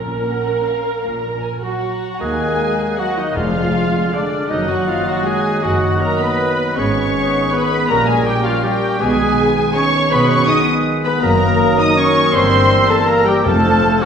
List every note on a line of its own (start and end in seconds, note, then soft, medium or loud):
0.00 0.18 A#1 medium
0.00 0.19 A#2 medium
0.00 0.42 A#2 medium
0.00 1.59 C#4 medium
0.00 1.59 A#4 medium
0.25 0.63 F#5 medium
0.65 1.03 F5 medium
1.04 1.36 A#1 soft
1.04 1.36 A#2 medium
1.04 1.43 A#5 medium
1.42 1.63 G#5 medium
1.62 2.17 F#3 medium
1.62 2.17 F#4 medium
1.62 2.17 F#5 medium
1.82 2.20 A#5 medium
2.19 2.53 D#2 medium
2.19 3.32 F#3 medium
2.19 2.98 G#3 medium
2.19 3.31 A#3 medium
2.19 2.95 A#3 medium
2.19 3.01 G#4 medium
2.19 2.99 G#4 medium
2.19 2.95 D#5 medium
2.19 2.98 G#5 medium
2.19 2.99 G#5 medium
2.19 2.94 F#6 medium
2.98 3.18 F#3 medium
2.98 3.35 A#3 medium
2.98 3.20 F#4 medium
2.98 3.18 F#4 medium
2.98 3.38 D#5 medium
2.98 3.17 F#5 medium
2.98 3.18 F#5 medium
2.98 3.35 F#6 medium
3.17 3.36 D#3 medium
3.17 3.36 D#4 medium
3.17 3.38 D#4 medium
3.17 3.35 D#5 medium
3.17 3.36 D#5 medium
3.35 3.67 F1 medium
3.35 3.90 F2 medium
3.35 3.68 F2 medium
3.35 4.51 D3 medium
3.35 4.12 F3 medium
3.35 4.12 G#3 medium
3.35 4.51 G#3 medium
3.35 4.14 F4 medium
3.35 4.15 F4 medium
3.35 4.13 D5 medium
3.35 4.13 F5 medium
3.35 4.12 F6 medium
4.13 4.50 D3 medium
4.13 4.52 G#3 medium
4.13 4.50 D4 medium
4.13 4.52 D5 medium
4.13 4.50 D5 medium
4.13 4.52 F6 medium
4.49 4.81 F#1 medium
4.49 4.81 F#2 medium
4.49 4.68 D#3 medium
4.49 6.74 D#3 medium
4.49 5.62 F#3 medium
4.49 6.73 A#3 medium
4.49 4.67 D#4 medium
4.49 4.68 D#4 medium
4.49 4.67 D#5 medium
4.49 4.68 D#5 medium
4.49 5.61 D#5 medium
4.49 5.63 F#6 medium
4.68 4.87 F#3 medium
4.68 4.89 F#4 medium
4.68 4.76 F#4 medium
4.68 4.87 F#5 medium
4.68 4.88 F#5 medium
4.86 5.06 F3 medium
4.86 5.07 F4 medium
4.86 5.10 F4 medium
4.86 5.07 F5 medium
5.06 5.26 F#3 medium
5.06 5.27 F#4 medium
5.06 5.25 F#4 medium
5.06 5.27 F#5 medium
5.24 5.62 G#3 medium
5.24 5.64 G#4 medium
5.24 5.63 G#4 medium
5.24 5.63 G#5 medium
5.24 5.62 G#5 medium
5.62 5.94 F#1 medium
5.62 5.94 F#2 medium
5.62 5.99 F#3 medium
5.62 6.02 F#4 medium
5.62 6.01 F#4 medium
5.62 5.99 D#5 medium
5.62 6.00 F#5 medium
5.62 6.01 F#5 medium
5.62 6.00 F#6 medium
5.99 6.78 F#3 medium
5.99 6.20 A#3 medium
5.99 6.20 A#4 medium
5.99 6.21 A#4 medium
5.99 6.78 D#5 medium
5.99 6.19 A#5 medium
5.99 6.20 A#5 medium
5.99 6.80 F#6 medium
6.18 6.76 B3 medium
6.18 6.77 B4 medium
6.18 6.80 B4 loud
6.18 6.77 B5 medium
6.76 7.08 G#1 medium
6.76 7.08 G#2 medium
6.76 7.88 D#3 medium
6.76 7.52 G#3 medium
6.76 7.88 B3 medium
6.76 7.53 C#4 medium
6.76 7.52 B4 medium
6.76 7.52 C#5 medium
6.76 7.55 C#5 medium
6.76 7.51 C#6 medium
6.76 7.53 C#6 medium
6.76 7.54 D#6 medium
7.52 7.91 G#3 medium
7.52 7.90 B3 medium
7.52 7.90 B4 medium
7.52 7.89 B5 medium
7.52 7.89 B5 loud
7.52 7.88 D#6 medium
7.89 8.20 A#1 medium
7.89 8.20 A#2 medium
7.89 9.01 G3 medium
7.89 8.63 G3 medium
7.89 8.07 A#3 loud
7.89 9.01 C#4 medium
7.89 8.64 A#4 medium
7.89 7.97 A#4 medium
7.89 8.08 A#4 medium
7.89 8.07 A#5 medium
7.89 8.07 A#5 loud
7.89 8.63 C#6 medium
8.07 8.26 G#3 medium
8.07 8.26 G#4 medium
8.07 8.27 G#4 medium
8.07 8.26 G#5 medium
8.25 8.45 G3 medium
8.25 8.45 G4 medium
8.25 8.44 G4 medium
8.25 8.45 G5 loud
8.25 8.46 G5 medium
8.44 8.65 F3 medium
8.44 8.66 F4 medium
8.44 8.65 F4 medium
8.44 8.64 F5 medium
8.44 8.65 F5 medium
8.63 8.99 G3 medium
8.63 9.02 G3 medium
8.63 9.00 G4 medium
8.63 9.03 G4 medium
8.63 8.99 A#4 medium
8.63 8.99 G5 medium
8.63 9.01 G5 medium
8.63 9.03 C#6 medium
9.00 9.31 B1 medium
9.00 9.31 B2 medium
9.00 11.21 D#3 medium
9.00 9.74 G#3 medium
9.00 9.85 G#3 medium
9.00 11.18 B3 medium
9.00 9.76 G#4 medium
9.00 9.49 G#4 loud
9.00 9.83 B4 medium
9.00 9.76 G#5 loud
9.00 9.77 G#5 loud
9.00 9.86 D#6 medium
9.75 10.12 C#4 loud
9.75 10.11 C#5 loud
9.75 10.14 C#5 loud
9.75 10.12 C#6 loud
10.11 10.42 B1 medium
10.11 10.42 B2 medium
10.11 10.46 G#3 medium
10.11 10.29 B3 loud
10.11 10.29 B4 loud
10.11 10.29 B4 medium
10.11 10.46 B4 medium
10.11 10.30 B5 loud
10.11 10.30 B5 medium
10.11 10.46 D#6 medium
10.29 10.49 C#4 medium
10.29 10.48 C#5 medium
10.29 10.38 C#5 medium
10.29 10.48 C#6 loud
10.29 10.49 C#6 loud
10.48 11.21 G#3 medium
10.48 10.67 D#4 medium
10.48 11.21 B4 medium
10.48 10.56 D#5 medium
10.48 10.58 D#5 medium
10.48 10.67 D#6 loud
10.48 10.68 D#6 loud
10.48 11.21 D#6 medium
11.04 11.21 B3 medium
11.04 11.25 B4 loud
11.04 11.13 B4 medium
11.04 11.21 B5 medium
11.04 11.12 B5 loud
11.21 11.53 F#1 medium
11.21 11.54 F#2 loud
11.21 12.31 D#3 medium
11.21 12.35 F#3 medium
11.21 13.45 A#3 medium
11.21 11.79 A#3 loud
11.21 13.46 A#4 medium
11.21 11.81 A#4 loud
11.21 11.78 A#4 loud
11.21 11.79 A#5 loud
11.21 11.78 A#5 loud
11.21 12.36 D#6 medium
11.78 11.98 D#4 medium
11.78 11.99 D#5 loud
11.78 11.98 D#5 medium
11.78 11.98 D#6 loud
11.78 11.87 D#6 medium
11.96 12.33 C#4 loud
11.96 12.33 C#5 loud
11.96 12.33 C#5 medium
11.96 12.34 C#6 loud
11.96 12.33 C#6 medium
12.33 12.64 G1 medium
12.33 12.64 G2 medium
12.33 13.45 E3 medium
12.33 13.47 G3 medium
12.33 12.89 C4 loud
12.33 12.91 C5 loud
12.33 12.90 C5 loud
12.33 12.90 C6 loud
12.33 13.45 E6 medium
12.89 12.98 A3 loud
12.89 13.10 A4 loud
12.89 13.09 A4 medium
12.89 13.09 A5 loud
12.89 13.09 A5 medium
13.07 13.26 A#3 loud
13.07 13.27 A#4 loud
13.07 13.27 A#5 medium
13.07 13.27 A#5 loud
13.25 13.44 G3 loud
13.25 13.46 G4 medium
13.25 13.35 G4 medium
13.25 13.33 G5 medium
13.25 13.45 G5 loud
13.44 13.76 F1 medium
13.44 13.98 F2 medium
13.44 13.76 F2 medium
13.44 14.05 C3 medium
13.44 14.05 F3 medium
13.44 14.02 A3 loud
13.44 14.05 C4 medium
13.44 14.03 A4 loud
13.44 14.01 A4 loud
13.44 14.05 C5 medium
13.44 14.00 A5 loud
13.44 14.02 A5 loud
13.44 14.05 F6 medium
14.01 14.05 F#3 medium
14.01 14.05 F#4 loud
14.01 14.05 F#5 medium
14.01 14.05 F#5 loud